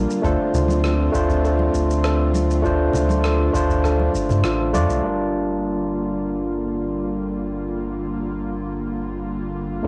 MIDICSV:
0, 0, Header, 1, 6, 480
1, 0, Start_track
1, 0, Key_signature, -2, "minor"
1, 0, Tempo, 600000
1, 193, Time_signature, 4, 2, 24, 8
1, 7899, End_track
2, 0, Start_track
2, 0, Title_t, "Synth pluck"
2, 0, Program_c, 0, 84
2, 194, Note_on_c, 0, 69, 105
2, 410, Note_off_c, 0, 69, 0
2, 678, Note_on_c, 0, 65, 76
2, 892, Note_off_c, 0, 65, 0
2, 1157, Note_on_c, 0, 69, 82
2, 1372, Note_off_c, 0, 69, 0
2, 1637, Note_on_c, 0, 69, 100
2, 1852, Note_off_c, 0, 69, 0
2, 2115, Note_on_c, 0, 65, 84
2, 2330, Note_off_c, 0, 65, 0
2, 2596, Note_on_c, 0, 69, 78
2, 2811, Note_off_c, 0, 69, 0
2, 3077, Note_on_c, 0, 69, 107
2, 3292, Note_off_c, 0, 69, 0
2, 3555, Note_on_c, 0, 65, 76
2, 3771, Note_off_c, 0, 65, 0
2, 7899, End_track
3, 0, Start_track
3, 0, Title_t, "Tine electric piano"
3, 0, Program_c, 1, 4
3, 0, Control_c, 1, 64, 127
3, 0, Note_on_c, 1, 55, 90
3, 0, Note_on_c, 1, 62, 79
3, 0, Note_on_c, 1, 65, 78
3, 0, Note_on_c, 1, 70, 97
3, 159, Note_off_c, 1, 55, 0
3, 164, Note_off_c, 1, 62, 0
3, 168, Note_off_c, 1, 65, 0
3, 173, Note_off_c, 1, 70, 0
3, 175, Note_on_c, 1, 57, 87
3, 185, Note_on_c, 1, 62, 73
3, 195, Note_on_c, 1, 65, 74
3, 203, Control_c, 1, 64, 0
3, 203, Note_on_c, 1, 72, 94
3, 320, Control_c, 1, 64, 127
3, 876, Note_off_c, 1, 57, 0
3, 881, Note_off_c, 1, 62, 0
3, 886, Note_off_c, 1, 65, 0
3, 890, Note_off_c, 1, 72, 0
3, 898, Note_on_c, 1, 57, 92
3, 905, Note_on_c, 1, 62, 81
3, 916, Note_on_c, 1, 65, 80
3, 924, Note_on_c, 1, 72, 96
3, 2077, Note_off_c, 1, 57, 0
3, 2081, Note_off_c, 1, 62, 0
3, 2087, Note_off_c, 1, 65, 0
3, 2090, Note_off_c, 1, 72, 0
3, 2097, Note_on_c, 1, 57, 84
3, 2108, Note_on_c, 1, 62, 83
3, 2115, Note_on_c, 1, 65, 74
3, 2126, Note_on_c, 1, 72, 92
3, 2797, Note_off_c, 1, 57, 0
3, 2802, Note_off_c, 1, 62, 0
3, 2806, Note_off_c, 1, 65, 0
3, 2811, Note_off_c, 1, 72, 0
3, 2822, Note_on_c, 1, 57, 87
3, 2828, Note_on_c, 1, 62, 81
3, 2840, Note_on_c, 1, 65, 85
3, 2848, Note_on_c, 1, 72, 102
3, 3764, Note_off_c, 1, 57, 0
3, 3767, Note_off_c, 1, 62, 0
3, 3773, Note_off_c, 1, 65, 0
3, 3777, Note_off_c, 1, 72, 0
3, 3784, Note_on_c, 1, 57, 87
3, 3789, Note_on_c, 1, 62, 83
3, 3794, Note_on_c, 1, 65, 83
3, 3800, Note_on_c, 1, 74, 101
3, 4000, Note_off_c, 1, 57, 0
3, 4003, Note_off_c, 1, 62, 0
3, 4006, Note_off_c, 1, 65, 0
3, 4008, Note_off_c, 1, 74, 0
3, 4017, Note_on_c, 1, 55, 65
3, 4026, Note_on_c, 1, 62, 61
3, 4035, Note_on_c, 1, 65, 60
3, 4044, Control_c, 1, 64, 0
3, 4045, Note_on_c, 1, 70, 67
3, 4177, Control_c, 1, 64, 127
3, 7837, Note_off_c, 1, 55, 0
3, 7841, Note_off_c, 1, 62, 0
3, 7846, Note_off_c, 1, 65, 0
3, 7851, Note_off_c, 1, 70, 0
3, 7861, Note_on_c, 1, 57, 67
3, 7872, Note_on_c, 1, 62, 57
3, 7882, Control_c, 1, 64, 0
3, 7899, Note_off_c, 1, 57, 0
3, 7899, Note_off_c, 1, 62, 0
3, 7899, End_track
4, 0, Start_track
4, 0, Title_t, "Analog synth pad"
4, 0, Program_c, 2, 89
4, 0, Note_on_c, 2, 50, 76
4, 0, Note_on_c, 2, 55, 72
4, 0, Note_on_c, 2, 58, 80
4, 0, Note_on_c, 2, 65, 93
4, 159, Note_off_c, 2, 50, 0
4, 160, Note_off_c, 2, 65, 0
4, 163, Note_off_c, 2, 55, 0
4, 163, Note_off_c, 2, 58, 0
4, 185, Note_on_c, 2, 60, 81
4, 187, Note_on_c, 2, 50, 84
4, 188, Note_on_c, 2, 57, 75
4, 188, Note_on_c, 2, 65, 92
4, 2090, Note_off_c, 2, 60, 0
4, 2117, Note_on_c, 2, 62, 75
4, 3998, Note_off_c, 2, 50, 0
4, 3998, Note_off_c, 2, 57, 0
4, 3998, Note_off_c, 2, 65, 0
4, 4016, Note_off_c, 2, 62, 0
4, 4035, Note_on_c, 2, 65, 80
4, 4036, Note_on_c, 2, 58, 65
4, 4037, Note_on_c, 2, 55, 64
4, 4039, Note_on_c, 2, 50, 76
4, 7842, Note_off_c, 2, 58, 0
4, 7843, Note_off_c, 2, 55, 0
4, 7874, Note_on_c, 2, 57, 68
4, 7899, Note_off_c, 2, 50, 0
4, 7899, Note_off_c, 2, 57, 0
4, 7899, Note_off_c, 2, 65, 0
4, 7899, End_track
5, 0, Start_track
5, 0, Title_t, "Sub bass"
5, 0, Program_c, 3, 38
5, 189, Note_on_c, 3, 38, 105
5, 291, Note_off_c, 3, 38, 0
5, 428, Note_on_c, 3, 38, 90
5, 875, Note_off_c, 3, 38, 0
5, 912, Note_on_c, 3, 38, 87
5, 1357, Note_off_c, 3, 38, 0
5, 1393, Note_on_c, 3, 38, 82
5, 2318, Note_off_c, 3, 38, 0
5, 2352, Note_on_c, 3, 38, 88
5, 2797, Note_off_c, 3, 38, 0
5, 2831, Note_on_c, 3, 38, 83
5, 3277, Note_off_c, 3, 38, 0
5, 3437, Note_on_c, 3, 43, 88
5, 3548, Note_off_c, 3, 43, 0
5, 3553, Note_on_c, 3, 33, 102
5, 3794, Note_on_c, 3, 41, 95
5, 3806, Note_off_c, 3, 33, 0
5, 3893, Note_off_c, 3, 41, 0
5, 3915, Note_on_c, 3, 36, 88
5, 4011, Note_off_c, 3, 36, 0
5, 4034, Note_on_c, 3, 31, 77
5, 7850, Note_off_c, 3, 31, 0
5, 7870, Note_on_c, 3, 38, 86
5, 7899, Note_off_c, 3, 38, 0
5, 7899, End_track
6, 0, Start_track
6, 0, Title_t, "Drums"
6, 81, Note_on_c, 9, 82, 45
6, 161, Note_off_c, 9, 82, 0
6, 192, Note_on_c, 9, 36, 114
6, 197, Note_on_c, 9, 82, 29
6, 272, Note_off_c, 9, 36, 0
6, 277, Note_off_c, 9, 82, 0
6, 435, Note_on_c, 9, 82, 74
6, 439, Note_on_c, 9, 64, 88
6, 515, Note_off_c, 9, 82, 0
6, 519, Note_off_c, 9, 64, 0
6, 548, Note_on_c, 9, 63, 91
6, 561, Note_on_c, 9, 82, 43
6, 628, Note_off_c, 9, 63, 0
6, 641, Note_off_c, 9, 82, 0
6, 671, Note_on_c, 9, 37, 97
6, 678, Note_on_c, 9, 82, 31
6, 751, Note_off_c, 9, 37, 0
6, 758, Note_off_c, 9, 82, 0
6, 912, Note_on_c, 9, 36, 106
6, 917, Note_on_c, 9, 82, 78
6, 992, Note_off_c, 9, 36, 0
6, 997, Note_off_c, 9, 82, 0
6, 1035, Note_on_c, 9, 36, 101
6, 1039, Note_on_c, 9, 82, 38
6, 1115, Note_off_c, 9, 36, 0
6, 1119, Note_off_c, 9, 82, 0
6, 1158, Note_on_c, 9, 82, 35
6, 1238, Note_off_c, 9, 82, 0
6, 1273, Note_on_c, 9, 63, 63
6, 1353, Note_off_c, 9, 63, 0
6, 1393, Note_on_c, 9, 36, 58
6, 1396, Note_on_c, 9, 82, 75
6, 1473, Note_off_c, 9, 36, 0
6, 1476, Note_off_c, 9, 82, 0
6, 1524, Note_on_c, 9, 82, 44
6, 1604, Note_off_c, 9, 82, 0
6, 1632, Note_on_c, 9, 37, 97
6, 1640, Note_on_c, 9, 82, 33
6, 1712, Note_off_c, 9, 37, 0
6, 1720, Note_off_c, 9, 82, 0
6, 1872, Note_on_c, 9, 63, 88
6, 1877, Note_on_c, 9, 82, 79
6, 1952, Note_off_c, 9, 63, 0
6, 1957, Note_off_c, 9, 82, 0
6, 2004, Note_on_c, 9, 82, 47
6, 2084, Note_off_c, 9, 82, 0
6, 2113, Note_on_c, 9, 36, 111
6, 2120, Note_on_c, 9, 82, 30
6, 2193, Note_off_c, 9, 36, 0
6, 2200, Note_off_c, 9, 82, 0
6, 2348, Note_on_c, 9, 64, 94
6, 2361, Note_on_c, 9, 82, 74
6, 2428, Note_off_c, 9, 64, 0
6, 2441, Note_off_c, 9, 82, 0
6, 2474, Note_on_c, 9, 63, 94
6, 2482, Note_on_c, 9, 82, 44
6, 2554, Note_off_c, 9, 63, 0
6, 2562, Note_off_c, 9, 82, 0
6, 2592, Note_on_c, 9, 37, 102
6, 2599, Note_on_c, 9, 82, 31
6, 2672, Note_off_c, 9, 37, 0
6, 2679, Note_off_c, 9, 82, 0
6, 2833, Note_on_c, 9, 36, 102
6, 2840, Note_on_c, 9, 82, 78
6, 2913, Note_off_c, 9, 36, 0
6, 2920, Note_off_c, 9, 82, 0
6, 2955, Note_on_c, 9, 36, 104
6, 2964, Note_on_c, 9, 82, 43
6, 3035, Note_off_c, 9, 36, 0
6, 3044, Note_off_c, 9, 82, 0
6, 3072, Note_on_c, 9, 36, 57
6, 3072, Note_on_c, 9, 37, 33
6, 3080, Note_on_c, 9, 82, 34
6, 3152, Note_off_c, 9, 36, 0
6, 3152, Note_off_c, 9, 37, 0
6, 3160, Note_off_c, 9, 82, 0
6, 3196, Note_on_c, 9, 63, 61
6, 3276, Note_off_c, 9, 63, 0
6, 3312, Note_on_c, 9, 36, 102
6, 3319, Note_on_c, 9, 82, 76
6, 3392, Note_off_c, 9, 36, 0
6, 3399, Note_off_c, 9, 82, 0
6, 3434, Note_on_c, 9, 64, 82
6, 3442, Note_on_c, 9, 82, 42
6, 3514, Note_off_c, 9, 64, 0
6, 3522, Note_off_c, 9, 82, 0
6, 3549, Note_on_c, 9, 37, 102
6, 3557, Note_on_c, 9, 82, 35
6, 3629, Note_off_c, 9, 37, 0
6, 3637, Note_off_c, 9, 82, 0
6, 3794, Note_on_c, 9, 63, 95
6, 3797, Note_on_c, 9, 82, 73
6, 3874, Note_off_c, 9, 63, 0
6, 3877, Note_off_c, 9, 82, 0
6, 3920, Note_on_c, 9, 82, 45
6, 4000, Note_off_c, 9, 82, 0
6, 7899, End_track
0, 0, End_of_file